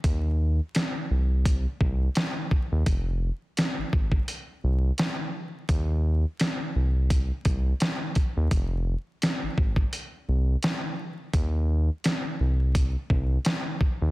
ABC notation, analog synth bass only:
X:1
M:4/4
L:1/16
Q:"Swing 16ths" 1/4=85
K:Fm
V:1 name="Analog synth bass" clef=bass
E,,4 z2 C,,4 C,,2 z3 E,, | F,,,3 z2 A,,, A,,,2 z2 C,,2 z4 | E,,4 z2 C,,4 C,,2 z3 E,, | F,,,3 z2 A,,, A,,,2 z2 C,,2 z4 |
E,,4 z2 C,,4 C,,2 z3 E,, |]